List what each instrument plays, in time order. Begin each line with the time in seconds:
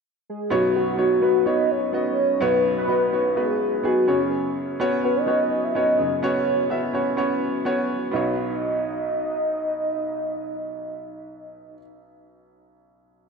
0.29 soft synth lead G#4
0.50 grand piano B1 F#2 B3 D#4 F#4 C#5, soft synth lead F#4
0.76 soft synth lead F#4
0.97 grand piano B3 D#4 F#4 C#5
1.21 grand piano B3 D#4 F#4 B4
1.46 grand piano B3 D#4 F#4 C#5, soft synth lead D#5
1.71 soft synth lead C#5
1.93 grand piano B3 D#4 F#4 D#5
2.41 grand piano B1 F#2 B3 D#4 F#4 C#5, soft synth lead B4
2.78 soft synth lead B4
2.88 grand piano B3 D#4 F#4 D#5
3.12 grand piano B3 D#4 F#4 C#5
3.36 grand piano B3 D#4 F#4 B4, soft synth lead G#4
3.83 grand piano B3 D#4 F#4 G#4, soft synth lead F#4
4.07 grand piano F#2 C#3 B3 C#4 F#4 C#5
4.80 grand piano B3 C#4 F#4 C#5
5.03 grand piano B3 C#4 F#4 C#5, soft synth lead B4
5.16 soft synth lead D#5
5.27 grand piano B3 C#4 F#4 C#5
5.64 soft synth lead E5
5.75 grand piano B3 C#4 F#4 C#5, soft synth lead D#5
5.99 grand piano F#2 C#3
6.23 grand piano B3 C#4 F#4 C#5, soft synth lead C#5
6.70 grand piano B3 C#4 F#4 E5
6.93 grand piano B3 C#4 F#4 C#5
7.17 grand piano B3 C#4 F#4 C#5
7.65 grand piano B3 C#4 F#4 C#5
8.11 grand piano B1 B3 D#4 F#4, soft synth lead D#5
8.16 grand piano C#5